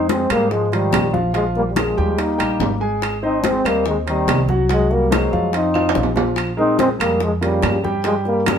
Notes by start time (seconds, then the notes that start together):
Already playing: F2 G#3 G#4 C5
0.09 G#3 C4, high bongo, high conga, high timbale, low timbale
0.30 G#2 G3 G#3 A#3 G#4 C5, high conga, high timbale, claves
0.51 F3 G#3, high bongo, high conga
0.72 D#3 F3 G3 F4 C5, high conga, high timbale
0.92 A#1, high bongo, low bongo, high conga, high timbale, low timbale, claves
1.13 F3 F4 F5, high conga
1.34 F3 G#3 F4 F5, high bongo, high conga, high timbale
1.55 G3 A#3, high bongo, high conga
1.70 D#3 G3
1.76 F3 G#3 G#4 A#4, high bongo, high conga, high timbale, low timbale, claves
1.97 D#2 G3 G4 G5, high bongo, high conga
2.18 A#3 D#4, high bongo, high conga, high timbale
2.38 A#1 G3 G4 G5, high bongo, high conga, high timbale, claves
2.60 G#1, high bongo, low bongo, high conga, low timbale
2.80 G#3 G#4 G#5
3.02 high bongo, high conga, high timbale, claves
3.23 C4 D#4 C5 D#5, high conga
3.44 G#3 C4, high bongo, high conga, high timbale, low timbale
3.65 D#2 G3 A#3 C4 C5 D#5, high conga, high timbale, claves
3.86 D#3 G#3, high bongo, high conga
4.07 D#3 G3 C4 C5 D#5, high conga, high timbale
4.28 C2, high bongo, low bongo, high conga, high timbale, low timbale, claves
4.49 F#3 F#4 F#5, high conga
4.69 F#3 G#3 F#4 F#5, high bongo, high timbale
4.91 G3 A#3, high bongo, high conga
5.10 F#3 G#3 A#3 A#4 C5, high bongo, high conga, high timbale, low timbale, claves
5.32 F2 F3 F4 F5, high bongo, high conga
5.53 C4 D#4, high bongo, high conga, high timbale
5.74 F3 F4 F5, high bongo, high conga, high timbale, claves
5.89 high timbale
5.95 A#1, high bongo, low bongo, high conga
6.03 low timbale
6.16 F3 F4 F5, high conga, low timbale
6.36 high bongo, high conga, high timbale, claves
6.57 G#3 C4 D#4 G#4 A#4, high conga
6.79 G#3 C4, high bongo, high conga, high timbale, low timbale
6.99 F2 G3 G#3 A#3 G#4 A#4, high conga, high timbale, claves
7.20 F3 G#3, high bongo, high conga
7.41 C#3 G3 A#3 F4 A#4, high conga, high timbale
7.63 G2, high bongo, low bongo, high conga, high timbale, low timbale, claves
7.84 G3 G4 G5, high conga
8.04 F3 G3 G#3 G4 G5, high bongo, high conga, high timbale
8.25 G3 A#3, high bongo, high conga
8.46 C#3 G3 A#3 A#4 C#5, high bongo, high conga, high timbale, low timbale, claves